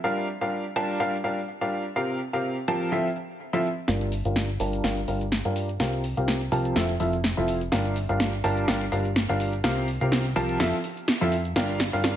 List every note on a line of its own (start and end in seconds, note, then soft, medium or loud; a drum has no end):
0.04 0.26 G3 medium
0.04 0.26 D4 medium
0.04 0.26 F4 medium
0.04 0.26 G4 medium
0.04 0.26 A#4 medium
0.04 0.26 F5 medium
0.41 0.63 G3 medium
0.41 0.63 D4 medium
0.41 0.63 F4 medium
0.41 0.63 G4 medium
0.41 0.63 A#4 medium
0.41 0.63 F5 medium
0.76 0.97 G3 medium
0.76 0.97 D4 medium
0.76 0.97 F4 medium
0.76 0.97 G4 medium
0.76 0.97 A#4 medium
0.76 0.97 A5 loud
1.00 1.15 G3 medium
1.00 1.15 D4 medium
1.00 1.15 F4 medium
1.00 1.15 G4 medium
1.00 1.15 A#4 medium
1.00 1.15 F5 loud
1.24 1.39 G3 medium
1.24 1.39 D4 medium
1.24 1.39 F4 medium
1.24 1.39 G4 medium
1.24 1.39 A#4 medium
1.24 1.39 F5 medium
1.61 1.83 G3 medium
1.61 1.83 D4 medium
1.61 1.83 F4 medium
1.61 1.83 G4 medium
1.61 1.83 A#4 medium
1.61 1.83 F5 medium
1.96 2.18 C3 medium
1.96 2.18 C4 medium
1.96 2.18 F4 medium
1.96 2.18 G4 medium
1.96 2.18 A#4 medium
1.96 2.18 F5 medium
2.33 2.55 C3 medium
2.33 2.55 C4 medium
2.33 2.55 F4 medium
2.33 2.55 G4 medium
2.33 2.55 A#4 medium
2.33 2.55 F5 medium
2.68 2.89 F3 loud
2.68 2.89 C4 medium
2.68 2.89 F4 medium
2.68 2.89 G4 medium
2.68 2.89 A#4 medium
2.68 2.89 A5 loud
2.92 3.07 F3 medium
2.92 3.07 C4 medium
2.92 3.07 E4 medium
2.92 3.07 F4 medium
2.92 3.07 A4 medium
2.92 3.07 E5 medium
3.53 3.66 F3 medium
3.53 3.66 C4 medium
3.53 3.66 E4 medium
3.53 3.66 F4 medium
3.53 3.66 A4 medium
3.53 3.66 E5 medium
3.88 4.23 G1 loud
3.88 4.10 G3 medium
3.88 4.10 D4 medium
3.88 4.10 F4 medium
3.88 4.10 G4 medium
3.88 4.10 A#4 medium
3.88 4.10 F5 medium
3.88 snare soft
3.88 closed hi-hat medium
3.88 shaker soft
4.01 closed hi-hat soft
4.12 open hi-hat loud
4.12 shaker medium
4.25 4.58 G1 medium
4.25 4.47 G3 medium
4.25 4.47 D4 medium
4.25 4.47 F4 medium
4.25 4.47 G4 medium
4.25 4.47 A#4 medium
4.25 4.47 F5 medium
4.25 closed hi-hat soft
4.25 shaker soft
4.36 snare soft
4.36 closed hi-hat medium
4.36 shaker soft
4.49 closed hi-hat soft
4.60 4.82 G1 medium
4.60 4.81 G3 medium
4.60 4.81 D4 medium
4.60 4.81 F4 medium
4.60 4.81 G4 medium
4.60 4.81 A#4 medium
4.60 4.81 A5 loud
4.60 open hi-hat loud
4.60 shaker medium
4.73 closed hi-hat soft
4.73 shaker soft
4.84 5.06 G1 medium
4.84 4.99 G3 medium
4.84 4.99 D4 medium
4.84 4.99 F4 medium
4.84 4.99 G4 medium
4.84 4.99 A#4 medium
4.84 4.99 F5 medium
4.84 snare soft
4.84 closed hi-hat medium
4.84 shaker soft
4.97 closed hi-hat soft
5.08 5.43 G1 loud
5.08 5.23 G3 medium
5.08 5.23 D4 medium
5.08 5.23 F4 medium
5.08 5.23 G4 medium
5.08 5.23 A#4 medium
5.08 5.23 F5 medium
5.08 open hi-hat loud
5.08 shaker medium
5.21 closed hi-hat soft
5.21 shaker soft
5.32 snare soft
5.32 closed hi-hat medium
5.32 shaker soft
5.45 5.78 G2 medium
5.45 5.67 G3 medium
5.45 5.67 D4 medium
5.45 5.67 F4 medium
5.45 5.67 G4 medium
5.45 5.67 A#4 medium
5.45 5.67 F5 medium
5.45 closed hi-hat soft
5.56 open hi-hat loud
5.56 shaker medium
5.69 closed hi-hat soft
5.69 shaker soft
5.80 6.15 C2 loud
5.80 6.02 C3 medium
5.80 6.02 C4 medium
5.80 6.02 F4 medium
5.80 6.02 G4 medium
5.80 6.02 A#4 medium
5.80 6.02 F5 medium
5.80 snare soft
5.80 closed hi-hat medium
5.80 shaker soft
5.93 closed hi-hat soft
6.04 open hi-hat loud
6.04 shaker medium
6.17 6.50 C2 loud
6.17 6.39 C3 medium
6.17 6.39 C4 medium
6.17 6.39 F4 medium
6.17 6.39 G4 medium
6.17 6.39 A#4 medium
6.17 6.39 F5 medium
6.17 closed hi-hat soft
6.17 shaker soft
6.28 snare medium
6.28 closed hi-hat medium
6.28 shaker soft
6.41 closed hi-hat soft
6.52 6.74 C2 medium
6.52 6.73 F3 medium
6.52 6.73 C4 medium
6.52 6.73 F4 medium
6.52 6.73 G4 medium
6.52 6.73 A#4 medium
6.52 6.73 A5 loud
6.52 open hi-hat loud
6.52 shaker medium
6.65 closed hi-hat soft
6.65 shaker soft
6.76 6.98 F1 loud
6.76 6.91 F3 medium
6.76 6.91 C4 medium
6.76 6.91 E4 medium
6.76 6.91 F4 medium
6.76 6.91 A4 medium
6.76 6.91 E5 loud
6.76 snare medium
6.76 closed hi-hat medium
6.76 shaker soft
6.89 closed hi-hat soft
7.00 7.35 F1 medium
7.00 7.15 F3 medium
7.00 7.15 C4 medium
7.00 7.15 E4 medium
7.00 7.15 F4 medium
7.00 7.15 A4 medium
7.00 7.15 E5 medium
7.00 open hi-hat loud
7.00 shaker medium
7.13 closed hi-hat soft
7.13 shaker soft
7.24 snare medium
7.24 closed hi-hat medium
7.24 shaker soft
7.37 7.70 F1 medium
7.37 7.59 F3 medium
7.37 7.59 C4 medium
7.37 7.59 E4 medium
7.37 7.59 F4 medium
7.37 7.59 A4 medium
7.37 7.59 E5 medium
7.37 closed hi-hat soft
7.48 open hi-hat loud
7.48 shaker medium
7.61 closed hi-hat soft
7.61 shaker soft
7.72 8.07 G1 medium
7.72 7.94 G3 medium
7.72 7.94 D4 medium
7.72 7.94 F4 medium
7.72 7.94 G4 medium
7.72 7.94 A#4 medium
7.72 7.94 F5 medium
7.72 snare medium
7.72 closed hi-hat medium
7.72 shaker soft
7.85 closed hi-hat soft
7.96 open hi-hat loud
7.96 shaker medium
8.09 8.42 G1 medium
8.09 8.31 G3 medium
8.09 8.31 D4 medium
8.09 8.31 F4 medium
8.09 8.31 G4 medium
8.09 8.31 A#4 medium
8.09 8.31 F5 medium
8.09 closed hi-hat soft
8.09 shaker soft
8.20 snare medium
8.20 closed hi-hat medium
8.20 shaker soft
8.33 closed hi-hat soft
8.44 8.66 G1 medium
8.44 8.65 G3 medium
8.44 8.65 D4 medium
8.44 8.65 F4 medium
8.44 8.65 G4 medium
8.44 8.65 A#4 medium
8.44 8.65 A5 loud
8.44 open hi-hat loud
8.44 shaker medium
8.57 closed hi-hat soft
8.57 shaker soft
8.68 8.90 G1 loud
8.68 8.83 G3 medium
8.68 8.83 D4 medium
8.68 8.83 F4 medium
8.68 8.83 G4 medium
8.68 8.83 A#4 medium
8.68 8.83 F5 loud
8.68 snare medium
8.68 closed hi-hat medium
8.68 shaker soft
8.81 closed hi-hat soft
8.92 9.27 G1 medium
8.92 9.07 G3 medium
8.92 9.07 D4 medium
8.92 9.07 F4 medium
8.92 9.07 G4 medium
8.92 9.07 A#4 medium
8.92 9.07 F5 medium
8.92 open hi-hat loud
8.92 shaker medium
9.05 closed hi-hat soft
9.05 shaker soft
9.16 snare medium
9.16 closed hi-hat medium
9.16 shaker soft
9.29 9.62 G1 medium
9.29 9.51 G3 medium
9.29 9.51 D4 medium
9.29 9.51 F4 medium
9.29 9.51 G4 medium
9.29 9.51 A#4 medium
9.29 9.51 F5 medium
9.29 closed hi-hat soft
9.40 open hi-hat loud
9.40 shaker medium
9.53 closed hi-hat soft
9.53 shaker soft
9.64 9.99 C2 loud
9.64 9.86 C3 medium
9.64 9.86 C4 medium
9.64 9.86 F4 medium
9.64 9.86 G4 medium
9.64 9.86 A#4 medium
9.64 9.86 F5 medium
9.64 snare medium
9.64 closed hi-hat medium
9.64 shaker soft
9.77 closed hi-hat soft
9.77 shaker soft
9.88 open hi-hat loud
9.88 shaker medium
10.01 10.34 C2 loud
10.01 10.23 C3 medium
10.01 10.23 C4 medium
10.01 10.23 F4 medium
10.01 10.23 G4 medium
10.01 10.23 A#4 medium
10.01 10.23 F5 medium
10.01 closed hi-hat soft
10.01 shaker soft
10.12 snare medium
10.12 closed hi-hat medium
10.12 shaker soft
10.25 closed hi-hat soft
10.36 10.58 C2 loud
10.36 10.57 F3 loud
10.36 10.57 C4 medium
10.36 10.57 F4 medium
10.36 10.57 G4 medium
10.36 10.57 A#4 medium
10.36 10.57 A5 loud
10.36 open hi-hat loud
10.36 shaker medium
10.49 closed hi-hat soft
10.49 shaker soft
10.60 10.73 F1 loud
10.60 10.75 F3 medium
10.60 10.75 C4 medium
10.60 10.75 E4 medium
10.60 10.75 F4 medium
10.60 10.75 A4 medium
10.60 10.75 E5 loud
10.60 snare medium
10.60 closed hi-hat medium
10.60 shaker soft
10.73 closed hi-hat soft
10.84 open hi-hat loud
10.84 shaker medium
10.97 closed hi-hat soft
10.97 shaker soft
11.08 snare medium
11.08 closed hi-hat medium
11.08 shaker soft
11.21 11.54 F2 medium
11.21 11.34 F3 medium
11.21 11.34 C4 medium
11.21 11.34 E4 medium
11.21 11.34 F4 medium
11.21 11.34 A4 medium
11.21 11.34 E5 loud
11.21 closed hi-hat soft
11.32 open hi-hat loud
11.32 shaker medium
11.45 closed hi-hat soft
11.45 shaker soft
11.56 11.91 G1 loud
11.56 11.78 G3 medium
11.56 11.78 D4 medium
11.56 11.78 F4 medium
11.56 11.78 G4 medium
11.56 11.78 A#4 medium
11.56 11.78 F5 medium
11.56 snare medium
11.56 closed hi-hat medium
11.56 shaker soft
11.69 closed hi-hat soft
11.80 snare medium
11.80 open hi-hat loud
11.80 shaker medium
11.93 12.16 G1 loud
11.93 12.15 G3 medium
11.93 12.15 D4 medium
11.93 12.15 F4 medium
11.93 12.15 G4 medium
11.93 12.15 A#4 medium
11.93 12.15 F5 medium
11.93 closed hi-hat soft
11.93 shaker soft
12.04 snare medium
12.04 closed hi-hat medium
12.04 shaker soft